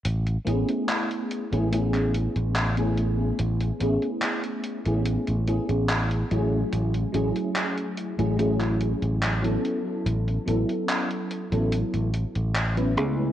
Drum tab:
HH |xxxxxxxxxxxxxxx-|xxxxxxxxxxxxxxx-|xxxxxxxxxxxxxxx-|xxxxxxxxxxxxxxx-|
CP |----x----x--x---|----x-------x---|----x----x--x---|----x-------x---|